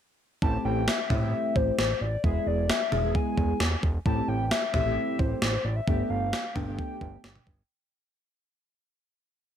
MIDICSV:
0, 0, Header, 1, 5, 480
1, 0, Start_track
1, 0, Key_signature, 0, "minor"
1, 0, Tempo, 454545
1, 445, Time_signature, 4, 2, 24, 8
1, 10103, End_track
2, 0, Start_track
2, 0, Title_t, "Soft synth lead"
2, 0, Program_c, 0, 80
2, 446, Note_on_c, 0, 81, 110
2, 668, Note_off_c, 0, 81, 0
2, 686, Note_on_c, 0, 79, 103
2, 924, Note_on_c, 0, 76, 98
2, 940, Note_off_c, 0, 79, 0
2, 1160, Note_off_c, 0, 76, 0
2, 1166, Note_on_c, 0, 76, 106
2, 1648, Note_on_c, 0, 72, 91
2, 1663, Note_off_c, 0, 76, 0
2, 1882, Note_off_c, 0, 72, 0
2, 1888, Note_on_c, 0, 72, 88
2, 2110, Note_off_c, 0, 72, 0
2, 2126, Note_on_c, 0, 74, 91
2, 2348, Note_off_c, 0, 74, 0
2, 2370, Note_on_c, 0, 76, 99
2, 2609, Note_on_c, 0, 74, 91
2, 2625, Note_off_c, 0, 76, 0
2, 2848, Note_on_c, 0, 76, 89
2, 2863, Note_off_c, 0, 74, 0
2, 3086, Note_off_c, 0, 76, 0
2, 3090, Note_on_c, 0, 76, 90
2, 3330, Note_on_c, 0, 80, 89
2, 3346, Note_off_c, 0, 76, 0
2, 4047, Note_off_c, 0, 80, 0
2, 4286, Note_on_c, 0, 81, 109
2, 4523, Note_on_c, 0, 79, 103
2, 4539, Note_off_c, 0, 81, 0
2, 4757, Note_off_c, 0, 79, 0
2, 4763, Note_on_c, 0, 76, 98
2, 4987, Note_off_c, 0, 76, 0
2, 5004, Note_on_c, 0, 76, 106
2, 5483, Note_on_c, 0, 72, 91
2, 5499, Note_off_c, 0, 76, 0
2, 5718, Note_off_c, 0, 72, 0
2, 5724, Note_on_c, 0, 72, 89
2, 5964, Note_on_c, 0, 74, 90
2, 5980, Note_off_c, 0, 72, 0
2, 6081, Note_on_c, 0, 76, 98
2, 6097, Note_off_c, 0, 74, 0
2, 6440, Note_on_c, 0, 77, 97
2, 6456, Note_off_c, 0, 76, 0
2, 6924, Note_on_c, 0, 79, 97
2, 6940, Note_off_c, 0, 77, 0
2, 7884, Note_off_c, 0, 79, 0
2, 10103, End_track
3, 0, Start_track
3, 0, Title_t, "Analog polysynth"
3, 0, Program_c, 1, 90
3, 445, Note_on_c, 1, 60, 67
3, 445, Note_on_c, 1, 67, 79
3, 446, Note_on_c, 1, 57, 71
3, 446, Note_on_c, 1, 64, 69
3, 869, Note_off_c, 1, 60, 0
3, 869, Note_off_c, 1, 64, 0
3, 869, Note_off_c, 1, 67, 0
3, 870, Note_off_c, 1, 57, 0
3, 1165, Note_on_c, 1, 57, 74
3, 1165, Note_on_c, 1, 60, 70
3, 1166, Note_on_c, 1, 64, 69
3, 1166, Note_on_c, 1, 67, 82
3, 1235, Note_off_c, 1, 57, 0
3, 1235, Note_off_c, 1, 60, 0
3, 1236, Note_off_c, 1, 64, 0
3, 1236, Note_off_c, 1, 67, 0
3, 1284, Note_on_c, 1, 60, 68
3, 1284, Note_on_c, 1, 64, 66
3, 1284, Note_on_c, 1, 67, 80
3, 1285, Note_on_c, 1, 57, 72
3, 1850, Note_off_c, 1, 60, 0
3, 1850, Note_off_c, 1, 64, 0
3, 1850, Note_off_c, 1, 67, 0
3, 1851, Note_off_c, 1, 57, 0
3, 2364, Note_on_c, 1, 64, 67
3, 2365, Note_on_c, 1, 56, 70
3, 2365, Note_on_c, 1, 59, 65
3, 2365, Note_on_c, 1, 68, 81
3, 2789, Note_off_c, 1, 56, 0
3, 2789, Note_off_c, 1, 59, 0
3, 2789, Note_off_c, 1, 64, 0
3, 2789, Note_off_c, 1, 68, 0
3, 3084, Note_on_c, 1, 59, 67
3, 3085, Note_on_c, 1, 56, 75
3, 3085, Note_on_c, 1, 64, 69
3, 3085, Note_on_c, 1, 68, 83
3, 3155, Note_off_c, 1, 56, 0
3, 3155, Note_off_c, 1, 59, 0
3, 3155, Note_off_c, 1, 64, 0
3, 3155, Note_off_c, 1, 68, 0
3, 3205, Note_on_c, 1, 56, 74
3, 3205, Note_on_c, 1, 68, 81
3, 3206, Note_on_c, 1, 59, 68
3, 3206, Note_on_c, 1, 64, 65
3, 3771, Note_off_c, 1, 56, 0
3, 3771, Note_off_c, 1, 59, 0
3, 3771, Note_off_c, 1, 64, 0
3, 3771, Note_off_c, 1, 68, 0
3, 4285, Note_on_c, 1, 57, 74
3, 4285, Note_on_c, 1, 60, 70
3, 4285, Note_on_c, 1, 64, 67
3, 4285, Note_on_c, 1, 67, 79
3, 4709, Note_off_c, 1, 57, 0
3, 4709, Note_off_c, 1, 60, 0
3, 4709, Note_off_c, 1, 64, 0
3, 4709, Note_off_c, 1, 67, 0
3, 5003, Note_on_c, 1, 57, 76
3, 5003, Note_on_c, 1, 60, 67
3, 5003, Note_on_c, 1, 64, 69
3, 5003, Note_on_c, 1, 67, 84
3, 5075, Note_off_c, 1, 57, 0
3, 5075, Note_off_c, 1, 60, 0
3, 5075, Note_off_c, 1, 64, 0
3, 5075, Note_off_c, 1, 67, 0
3, 5124, Note_on_c, 1, 57, 74
3, 5124, Note_on_c, 1, 60, 67
3, 5124, Note_on_c, 1, 64, 66
3, 5124, Note_on_c, 1, 67, 81
3, 5690, Note_off_c, 1, 57, 0
3, 5690, Note_off_c, 1, 60, 0
3, 5690, Note_off_c, 1, 64, 0
3, 5690, Note_off_c, 1, 67, 0
3, 6204, Note_on_c, 1, 57, 73
3, 6204, Note_on_c, 1, 59, 67
3, 6204, Note_on_c, 1, 62, 69
3, 6205, Note_on_c, 1, 67, 81
3, 6628, Note_off_c, 1, 59, 0
3, 6629, Note_off_c, 1, 57, 0
3, 6629, Note_off_c, 1, 62, 0
3, 6629, Note_off_c, 1, 67, 0
3, 6923, Note_on_c, 1, 59, 67
3, 6924, Note_on_c, 1, 57, 75
3, 6924, Note_on_c, 1, 62, 69
3, 6924, Note_on_c, 1, 67, 84
3, 6994, Note_off_c, 1, 59, 0
3, 6995, Note_off_c, 1, 57, 0
3, 6995, Note_off_c, 1, 62, 0
3, 6995, Note_off_c, 1, 67, 0
3, 7043, Note_on_c, 1, 62, 68
3, 7043, Note_on_c, 1, 67, 81
3, 7044, Note_on_c, 1, 57, 73
3, 7044, Note_on_c, 1, 59, 65
3, 7610, Note_off_c, 1, 57, 0
3, 7610, Note_off_c, 1, 59, 0
3, 7610, Note_off_c, 1, 62, 0
3, 7610, Note_off_c, 1, 67, 0
3, 10103, End_track
4, 0, Start_track
4, 0, Title_t, "Analog synth bass"
4, 0, Program_c, 2, 38
4, 444, Note_on_c, 2, 33, 102
4, 612, Note_off_c, 2, 33, 0
4, 684, Note_on_c, 2, 33, 108
4, 936, Note_off_c, 2, 33, 0
4, 1164, Note_on_c, 2, 33, 98
4, 1416, Note_off_c, 2, 33, 0
4, 1645, Note_on_c, 2, 33, 102
4, 1813, Note_off_c, 2, 33, 0
4, 1884, Note_on_c, 2, 33, 101
4, 2052, Note_off_c, 2, 33, 0
4, 2126, Note_on_c, 2, 33, 94
4, 2293, Note_off_c, 2, 33, 0
4, 2365, Note_on_c, 2, 28, 107
4, 2533, Note_off_c, 2, 28, 0
4, 2605, Note_on_c, 2, 28, 106
4, 2857, Note_off_c, 2, 28, 0
4, 3085, Note_on_c, 2, 28, 102
4, 3337, Note_off_c, 2, 28, 0
4, 3564, Note_on_c, 2, 28, 99
4, 3732, Note_off_c, 2, 28, 0
4, 3805, Note_on_c, 2, 28, 108
4, 3973, Note_off_c, 2, 28, 0
4, 4046, Note_on_c, 2, 28, 88
4, 4213, Note_off_c, 2, 28, 0
4, 4285, Note_on_c, 2, 33, 101
4, 4453, Note_off_c, 2, 33, 0
4, 4523, Note_on_c, 2, 33, 106
4, 4775, Note_off_c, 2, 33, 0
4, 5004, Note_on_c, 2, 33, 100
4, 5256, Note_off_c, 2, 33, 0
4, 5483, Note_on_c, 2, 33, 103
4, 5652, Note_off_c, 2, 33, 0
4, 5724, Note_on_c, 2, 33, 104
4, 5892, Note_off_c, 2, 33, 0
4, 5964, Note_on_c, 2, 33, 101
4, 6132, Note_off_c, 2, 33, 0
4, 6204, Note_on_c, 2, 31, 105
4, 6372, Note_off_c, 2, 31, 0
4, 6442, Note_on_c, 2, 31, 100
4, 6695, Note_off_c, 2, 31, 0
4, 6923, Note_on_c, 2, 31, 99
4, 7175, Note_off_c, 2, 31, 0
4, 7405, Note_on_c, 2, 31, 102
4, 7573, Note_off_c, 2, 31, 0
4, 7644, Note_on_c, 2, 31, 102
4, 7812, Note_off_c, 2, 31, 0
4, 7886, Note_on_c, 2, 31, 96
4, 8054, Note_off_c, 2, 31, 0
4, 10103, End_track
5, 0, Start_track
5, 0, Title_t, "Drums"
5, 445, Note_on_c, 9, 36, 103
5, 550, Note_off_c, 9, 36, 0
5, 926, Note_on_c, 9, 38, 113
5, 1032, Note_off_c, 9, 38, 0
5, 1164, Note_on_c, 9, 36, 89
5, 1164, Note_on_c, 9, 45, 100
5, 1269, Note_off_c, 9, 36, 0
5, 1270, Note_off_c, 9, 45, 0
5, 1645, Note_on_c, 9, 36, 94
5, 1750, Note_off_c, 9, 36, 0
5, 1886, Note_on_c, 9, 38, 100
5, 1991, Note_off_c, 9, 38, 0
5, 2365, Note_on_c, 9, 36, 104
5, 2471, Note_off_c, 9, 36, 0
5, 2847, Note_on_c, 9, 38, 110
5, 2952, Note_off_c, 9, 38, 0
5, 3085, Note_on_c, 9, 45, 101
5, 3190, Note_off_c, 9, 45, 0
5, 3326, Note_on_c, 9, 36, 90
5, 3431, Note_off_c, 9, 36, 0
5, 3564, Note_on_c, 9, 36, 97
5, 3670, Note_off_c, 9, 36, 0
5, 3804, Note_on_c, 9, 38, 100
5, 3910, Note_off_c, 9, 38, 0
5, 4046, Note_on_c, 9, 36, 89
5, 4151, Note_off_c, 9, 36, 0
5, 4284, Note_on_c, 9, 36, 105
5, 4390, Note_off_c, 9, 36, 0
5, 4766, Note_on_c, 9, 38, 113
5, 4871, Note_off_c, 9, 38, 0
5, 5003, Note_on_c, 9, 36, 90
5, 5004, Note_on_c, 9, 45, 106
5, 5109, Note_off_c, 9, 36, 0
5, 5110, Note_off_c, 9, 45, 0
5, 5484, Note_on_c, 9, 36, 96
5, 5589, Note_off_c, 9, 36, 0
5, 5724, Note_on_c, 9, 38, 102
5, 5829, Note_off_c, 9, 38, 0
5, 6204, Note_on_c, 9, 36, 109
5, 6310, Note_off_c, 9, 36, 0
5, 6685, Note_on_c, 9, 38, 111
5, 6791, Note_off_c, 9, 38, 0
5, 6923, Note_on_c, 9, 36, 86
5, 6924, Note_on_c, 9, 45, 103
5, 7029, Note_off_c, 9, 36, 0
5, 7030, Note_off_c, 9, 45, 0
5, 7166, Note_on_c, 9, 36, 89
5, 7272, Note_off_c, 9, 36, 0
5, 7405, Note_on_c, 9, 36, 98
5, 7510, Note_off_c, 9, 36, 0
5, 7645, Note_on_c, 9, 38, 103
5, 7751, Note_off_c, 9, 38, 0
5, 7767, Note_on_c, 9, 45, 87
5, 7872, Note_off_c, 9, 45, 0
5, 7886, Note_on_c, 9, 36, 91
5, 7992, Note_off_c, 9, 36, 0
5, 10103, End_track
0, 0, End_of_file